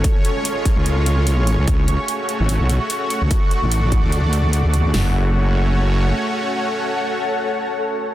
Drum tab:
HH |xxxxxxxx|xxxxxxxx|xxxxxxxx|o-------|
SD |--------|--------|--------|o-------|
FT |--------|--------|--------|o-------|
BD |o--o----|o-------|o--o----|--------|

HH |--------|
SD |--------|
FT |--------|
BD |--------|